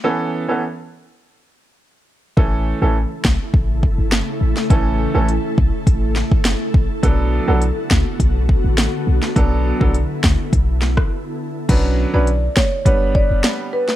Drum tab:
CC |----------------|----------------|----------------|----------------|
HH |----------------|----------------|x---x---x---x---|x---x---x---x---|
SD |----------------|------o-----o--o|----------o-o---|------o-----o--o|
BD |----------------|o-----o-o-o-----|o-----o-o--o--o-|o-----o-o-o-----|

CC |----------------|x---------------|
HH |x---x---x-------|x---x---x---x---|
SD |------o---or----|------o-----o--o|
BD |o--o--o-o--o----|o-----o-o-o-----|